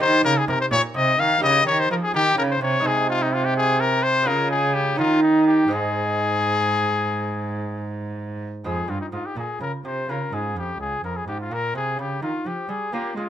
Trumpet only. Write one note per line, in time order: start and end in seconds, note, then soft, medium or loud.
0.02 0.24 C5 loud
0.24 0.39 A#4 loud
0.37 0.47 G#4 loud
0.48 0.60 A#4 medium
0.61 0.66 C5 loud
0.71 0.82 C#5 loud
0.96 1.21 D#5 loud
1.20 1.43 F5 loud
1.43 1.66 D#5 loud
1.67 1.81 C#5 loud
1.80 1.90 C5 loud
1.91 1.96 A#4 loud
2.03 2.14 G#4 medium
2.15 2.37 G4 loud
2.38 2.43 A#4 loud
2.51 2.62 C5 medium
2.62 2.88 C#5 loud
2.87 3.09 G#4 loud
3.10 3.24 F4 loud
3.22 3.35 D#4 medium
3.34 3.46 F4 medium
3.45 3.56 G4 medium
3.57 3.82 G#4 loud
3.80 4.04 A#4 loud
4.03 4.28 C5 loud
4.27 4.50 A#4 loud
4.51 4.76 G#4 loud
4.74 4.98 G4 loud
4.99 5.22 F4 loud
5.23 5.47 D#4 medium
5.48 5.75 G4 medium
5.73 7.93 G#4 loud
8.66 8.91 G#4 medium
8.90 9.01 F4 medium
9.01 9.06 D#4 medium
9.13 9.27 F4 medium
9.26 9.37 G4 medium
9.38 9.61 G#4 medium
9.62 9.72 A#4 medium
9.85 10.11 C5 medium
10.10 10.35 A#4 medium
10.34 10.57 G#4 medium
10.58 10.80 G4 medium
10.80 11.03 G#4 medium
11.04 11.18 A#4 medium
11.16 11.27 G#4 medium
11.27 11.39 G4 medium
11.41 11.54 F4 medium
11.53 11.76 A#4 medium
11.76 11.98 G#4 medium
12.01 12.22 G4 medium
12.23 12.48 F4 medium
12.47 12.71 G4 medium
12.69 12.95 G#4 medium
12.93 13.16 G4 medium
13.16 13.29 F4 medium